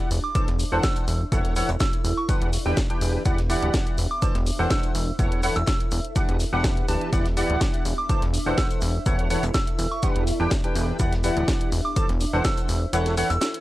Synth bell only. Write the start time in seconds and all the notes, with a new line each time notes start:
0.24 D6
0.35 D6
0.84 E6
1.80 E6
2.17 C#6
4.11 D6
4.22 D6
4.71 E6
5.56 E6
5.67 E6
7.98 D6
8.09 D6
8.58 E6
9.54 E6
9.91 C#6
11.85 D6
11.96 D6
12.45 E6
13.30 E6
13.42 E6